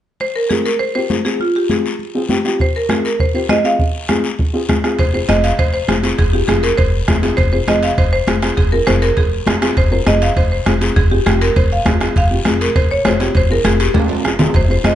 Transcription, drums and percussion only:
0.20 high conga, long guiro
0.51 high conga, short guiro
0.66 short guiro
0.80 high conga, long guiro
1.10 high conga, short guiro
1.25 short guiro
1.40 high conga, long guiro
1.70 high conga, short guiro
1.86 short guiro
1.99 high conga, long guiro
2.29 high conga, short guiro
2.45 short guiro
2.60 bombo low, high conga, long guiro
2.89 bombo rim, high conga, short guiro
3.05 short guiro
3.19 bombo low, high conga, long guiro
3.49 bombo rim, high conga, short guiro
3.65 short guiro
3.79 bombo low, high conga, long guiro
4.09 bombo rim, high conga, short guiro
4.24 short guiro
4.39 bombo low, high conga, long guiro
4.69 bombo low, bombo rim, high conga, short guiro
4.84 bombo rim, short guiro
4.99 bombo low, high conga, high timbale, long guiro
5.29 bombo rim, high conga, high timbale, short guiro
5.44 high timbale, short guiro
5.59 bombo low, high conga, high timbale, long guiro
5.88 bombo rim, high conga, high timbale, short guiro
6.04 high timbale, short guiro
6.18 bombo low, high conga, high timbale, long guiro
6.48 bombo rim, high conga, high timbale, short guiro
6.63 high timbale, short guiro
6.78 bombo low, high conga, high timbale, long guiro
7.08 bombo low, bombo rim, high conga, high timbale, low timbale, short guiro
7.23 high timbale, short guiro
7.38 bombo low, high conga, high timbale, long guiro
7.68 bombo rim, high conga, high timbale, short guiro
7.83 high timbale, short guiro
7.97 bombo low, high conga, high timbale, long guiro
8.27 bombo rim, high conga, high timbale, short guiro
8.42 bombo rim, high timbale, short guiro
8.57 bombo low, high conga, high timbale, long guiro
8.87 bombo rim, high conga, high timbale, short guiro
9.02 high timbale, short guiro
9.17 bombo low, high conga, high timbale, long guiro
9.47 bombo rim, high conga, high timbale, low timbale, short guiro
9.62 bombo rim, high timbale, short guiro
9.77 bombo low, high timbale, long guiro
10.07 bombo rim, high conga, high timbale, short guiro
10.22 high timbale, short guiro
10.36 bombo low, high conga, high timbale, long guiro
10.66 bombo rim, high conga, high timbale, short guiro
10.81 high timbale, short guiro
10.96 bombo low, high conga, high timbale, long guiro
11.26 bombo rim, high conga, high timbale, short guiro
11.41 high timbale, short guiro
11.56 bombo low, high conga, high timbale, long guiro
11.86 bombo low, bombo rim, high conga, high timbale, low timbale, short guiro
12.01 bombo rim, high timbale, short guiro
12.16 bombo low, high conga, high timbale, long guiro
12.45 bombo rim, high conga, high timbale, short guiro
12.61 high timbale, short guiro
12.76 bombo low, high conga, high timbale, long guiro
13.05 bombo rim, high conga, high timbale, low timbale, short guiro
13.20 high timbale, short guiro
13.35 bombo low, high conga, high timbale, long guiro
13.65 bombo rim, high conga, high timbale, short guiro
13.80 high timbale, short guiro
13.94 bombo low, high conga, high timbale, long guiro
14.09 low timbale
14.25 bombo rim, short guiro
14.39 low conga, low timbale, short guiro
14.54 bombo low, high conga, high timbale, long guiro
14.84 bombo rim, high conga, high timbale, short guiro

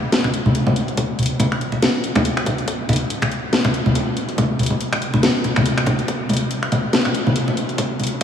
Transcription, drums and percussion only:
0.12 snare, closed hi-hat
0.24 finger snap, muted conga
0.34 closed hi-hat
0.46 high conga
0.55 closed hi-hat
0.67 muted conga
0.76 closed hi-hat
0.88 closed hi-hat
0.97 kick, closed hi-hat, muted conga
1.19 closed hi-hat, high conga
1.23 closed hi-hat
1.26 closed hi-hat
1.40 closed hi-hat, muted conga
1.52 finger snap
1.61 closed hi-hat
1.72 muted conga
1.82 snare, closed hi-hat
2.04 closed hi-hat
2.15 finger snap, muted conga, high conga
2.25 closed hi-hat
2.37 finger snap
2.46 kick, closed hi-hat, muted conga
2.58 closed hi-hat
2.68 kick, closed hi-hat
2.89 closed hi-hat, muted conga, high conga
2.93 closed hi-hat
2.96 closed hi-hat
3.10 closed hi-hat
3.22 finger snap, muted conga
3.32 closed hi-hat
3.53 snare, closed hi-hat
3.65 finger snap, muted conga
3.74 closed hi-hat
3.86 high conga
3.95 closed hi-hat, muted conga
4.17 closed hi-hat
4.29 closed hi-hat
4.38 kick, closed hi-hat, muted conga
4.59 closed hi-hat, high conga
4.63 closed hi-hat
4.66 closed hi-hat
4.70 muted conga
4.81 closed hi-hat
4.93 finger snap
5.02 closed hi-hat
5.14 muted conga
5.23 snare, closed hi-hat
5.44 closed hi-hat, muted conga
5.56 finger snap, high conga
5.66 closed hi-hat
5.78 finger snap
5.86 kick, closed hi-hat, muted conga
5.99 closed hi-hat
6.08 kick, closed hi-hat
6.29 closed hi-hat, muted conga, high conga
6.33 closed hi-hat
6.37 closed hi-hat
6.51 closed hi-hat
6.63 finger snap
6.72 closed hi-hat, muted conga
6.93 snare, closed hi-hat
7.05 finger snap, muted conga
7.15 closed hi-hat
7.27 high conga
7.36 closed hi-hat
7.48 muted conga
7.57 closed hi-hat
7.69 closed hi-hat
7.78 kick, closed hi-hat, muted conga
7.99 closed hi-hat, high conga
8.04 closed hi-hat
8.07 closed hi-hat

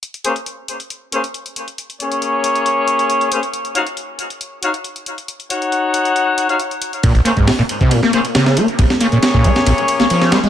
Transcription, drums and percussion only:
0.03 closed hi-hat
0.14 closed hi-hat
0.25 closed hi-hat
0.36 closed hi-hat
0.46 closed hi-hat
0.68 closed hi-hat
0.80 closed hi-hat
0.90 closed hi-hat
1.12 closed hi-hat
1.24 closed hi-hat
1.34 closed hi-hat
1.46 closed hi-hat
1.56 closed hi-hat
1.68 closed hi-hat
1.78 closed hi-hat
1.90 closed hi-hat
2.00 closed hi-hat
2.12 closed hi-hat
2.22 closed hi-hat
2.44 closed hi-hat
2.56 closed hi-hat
2.66 closed hi-hat
2.88 closed hi-hat
2.99 closed hi-hat
3.10 closed hi-hat
3.21 closed hi-hat
3.32 closed hi-hat
3.43 closed hi-hat
3.54 closed hi-hat
3.65 closed hi-hat
3.75 closed hi-hat
3.87 closed hi-hat
3.97 closed hi-hat
4.19 closed hi-hat
4.30 closed hi-hat
4.41 closed hi-hat
4.63 closed hi-hat
4.74 closed hi-hat
4.84 closed hi-hat
4.96 closed hi-hat
5.06 closed hi-hat
5.18 closed hi-hat
5.28 closed hi-hat
5.40 closed hi-hat
5.50 closed hi-hat
5.62 closed hi-hat
5.72 closed hi-hat
5.94 closed hi-hat
6.05 closed hi-hat
6.16 closed hi-hat
6.38 closed hi-hat
6.49 closed hi-hat
6.60 closed hi-hat
6.71 closed hi-hat
6.82 closed hi-hat
6.93 closed hi-hat
7.03 kick, closed hi-hat, ride
7.15 closed hi-hat
7.25 closed hi-hat, ride
7.37 kick, closed hi-hat
7.47 snare, closed hi-hat, open hi-hat
7.69 closed hi-hat, ride
7.81 kick, closed hi-hat
7.91 closed hi-hat, ride
8.03 snare
8.13 closed hi-hat, ride
8.25 closed hi-hat, ride
8.35 snare, closed hi-hat, ride
8.46 snare, closed hi-hat
8.57 closed hi-hat, ride
8.68 closed hi-hat
8.79 kick, closed hi-hat, ride
8.90 snare, closed hi-hat
9.01 closed hi-hat, ride
9.12 closed hi-hat
9.22 snare, closed hi-hat, ride
9.34 kick
9.44 kick, closed hi-hat, ride
9.56 snare, closed hi-hat
9.66 closed hi-hat, ride
9.78 ride
9.88 closed hi-hat, ride
10.00 snare, closed hi-hat
10.10 closed hi-hat, ride
10.22 snare, closed hi-hat
10.32 snare, closed hi-hat, ride
10.44 closed hi-hat

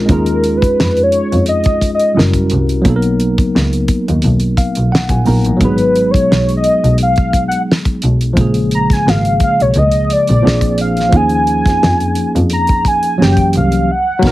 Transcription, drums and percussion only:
0.09 kick, closed hi-hat
0.26 closed hi-hat
0.44 closed hi-hat
0.62 kick, closed hi-hat
0.80 snare
0.97 closed hi-hat
1.12 closed hi-hat
1.32 closed hi-hat
1.46 closed hi-hat
1.64 kick, closed hi-hat
1.81 kick, closed hi-hat
2.00 closed hi-hat
2.19 snare
2.33 kick, closed hi-hat
2.50 closed hi-hat
2.69 closed hi-hat
2.85 kick, closed hi-hat
3.02 closed hi-hat
3.20 closed hi-hat
3.38 kick, closed hi-hat
3.56 snare
3.73 closed hi-hat
3.88 kick, closed hi-hat
4.08 closed hi-hat
4.22 closed hi-hat
4.40 closed hi-hat
4.57 kick, closed hi-hat
4.75 closed hi-hat
4.95 snare
5.09 kick, closed hi-hat
5.26 open hi-hat
5.45 closed hi-hat
5.61 kick, closed hi-hat
5.78 closed hi-hat
5.96 closed hi-hat
6.14 kick, closed hi-hat
6.32 snare
6.49 closed hi-hat
6.64 closed hi-hat
6.84 closed hi-hat
6.98 closed hi-hat
7.16 kick, closed hi-hat
7.33 kick, closed hi-hat
7.52 closed hi-hat
7.71 snare
7.85 kick, closed hi-hat
8.02 closed hi-hat
8.21 closed hi-hat
8.37 kick, closed hi-hat
8.54 closed hi-hat
8.71 closed hi-hat
8.90 kick, snare, closed hi-hat
9.08 snare
9.25 closed hi-hat
9.40 kick, closed hi-hat
9.60 closed hi-hat
9.74 closed hi-hat
9.91 closed hi-hat
10.10 closed hi-hat
10.27 closed hi-hat
10.47 snare
10.61 kick, closed hi-hat
10.78 closed hi-hat
10.97 snare, closed hi-hat
11.12 kick, closed hi-hat
11.29 closed hi-hat
11.47 closed hi-hat
11.66 kick, snare, closed hi-hat
11.83 snare
12.00 closed hi-hat
12.15 closed hi-hat
12.36 closed hi-hat
12.50 closed hi-hat
12.67 kick, closed hi-hat
12.85 kick, closed hi-hat
13.03 closed hi-hat
13.22 snare
13.37 kick, closed hi-hat
13.53 closed hi-hat
13.72 closed hi-hat
14.22 kick, snare, crash

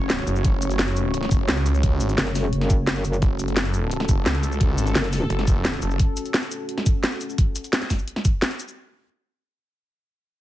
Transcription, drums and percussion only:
0.10 snare, closed hi-hat
0.19 closed hi-hat
0.27 closed hi-hat, shaker
0.36 shaker
0.45 kick, closed hi-hat
0.62 closed hi-hat, shaker
0.71 closed hi-hat, shaker
0.79 snare, closed hi-hat
0.88 closed hi-hat
0.97 closed hi-hat, shaker
1.14 closed hi-hat
1.23 snare
1.31 kick, closed hi-hat, shaker
1.49 snare, closed hi-hat
1.57 closed hi-hat
1.66 closed hi-hat, shaker
1.75 shaker
1.83 kick, closed hi-hat
2.01 closed hi-hat, shaker
2.09 closed hi-hat, shaker
2.18 snare, closed hi-hat
2.27 closed hi-hat
2.35 snare, open hi-hat, shaker
2.53 closed hi-hat
2.61 snare
2.70 kick, closed hi-hat, shaker
2.87 snare, closed hi-hat
2.96 closed hi-hat
3.05 closed hi-hat, shaker
3.13 shaker
3.22 kick, closed hi-hat
3.39 closed hi-hat, shaker
3.48 closed hi-hat, shaker
3.57 snare, closed hi-hat
3.65 closed hi-hat
3.74 closed hi-hat, shaker
3.91 closed hi-hat
4.00 snare
4.09 kick, closed hi-hat, shaker
4.26 snare, closed hi-hat
4.35 closed hi-hat
4.43 closed hi-hat, shaker
4.52 shaker
4.61 kick, closed hi-hat
4.78 closed hi-hat, shaker
4.87 closed hi-hat, shaker
4.95 snare, closed hi-hat
5.04 closed hi-hat
5.13 snare, open hi-hat, shaker
5.30 closed hi-hat
5.39 snare
5.47 kick, closed hi-hat, shaker
5.65 snare, closed hi-hat
5.74 closed hi-hat
5.82 closed hi-hat, shaker
5.91 shaker
5.99 kick, closed hi-hat
6.17 closed hi-hat, shaker
6.25 closed hi-hat, shaker
6.34 snare, closed hi-hat
6.43 closed hi-hat
6.51 closed hi-hat, shaker
6.69 closed hi-hat
6.78 snare
6.86 kick, closed hi-hat, shaker
7.04 snare, closed hi-hat
7.12 closed hi-hat
7.21 closed hi-hat, shaker
7.30 shaker
7.38 kick, closed hi-hat
7.56 closed hi-hat, shaker
7.64 closed hi-hat, shaker
7.73 snare, closed hi-hat
7.82 snare, closed hi-hat
7.90 kick, snare, open hi-hat, shaker
7.99 shaker
8.08 closed hi-hat
8.16 snare
8.25 kick, closed hi-hat, shaker
8.42 snare, closed hi-hat
8.51 closed hi-hat
8.60 closed hi-hat, shaker
8.68 shaker

